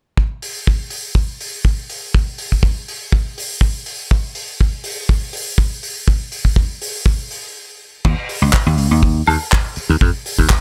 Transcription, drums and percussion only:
0.17 kick medium
0.42 open hi-hat loud
0.67 kick loud
0.90 open hi-hat loud
1.15 kick loud
1.41 open hi-hat loud
1.65 kick loud
1.90 open hi-hat medium
2.15 kick loud
2.38 open hi-hat medium
2.52 kick soft
2.63 kick loud
2.88 open hi-hat medium
3.12 kick loud
3.38 open hi-hat loud
3.61 kick loud
3.86 open hi-hat loud
4.11 kick loud
4.35 open hi-hat medium
4.61 kick loud
4.84 open hi-hat loud
5.09 kick loud
5.33 open hi-hat loud
5.58 kick loud
5.83 open hi-hat loud
6.08 kick loud
6.32 open hi-hat loud
6.45 kick medium
6.56 kick loud
6.82 open hi-hat loud
7.06 kick loud
7.31 open hi-hat loud
8.05 kick loud
8.05 crash medium
8.29 open hi-hat loud
8.53 kick loud
8.53 clap loud
8.78 open hi-hat medium
9.03 kick loud
9.26 open hi-hat loud
9.26 high woodblock medium
9.52 kick loud
9.52 clap loud
9.76 open hi-hat loud
10.01 kick loud
10.26 open hi-hat loud
10.38 kick medium
10.50 kick loud
10.50 clap loud

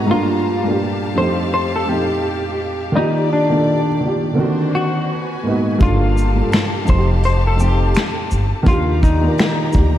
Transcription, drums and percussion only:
5.80 kick loud
5.80 closed hi-hat medium
6.18 shaker soft
6.52 finger snap medium
6.52 snare loud
6.52 closed hi-hat medium
6.87 kick medium
6.87 shaker soft
7.23 closed hi-hat medium
7.60 shaker medium
7.94 finger snap medium
7.94 snare loud
7.94 closed hi-hat medium
8.31 closed hi-hat soft
8.31 shaker soft
8.66 kick loud
8.66 closed hi-hat medium
9.03 kick medium
9.03 shaker soft
9.38 finger snap medium
9.38 snare loud
9.38 closed hi-hat medium
9.73 kick medium
9.73 shaker soft

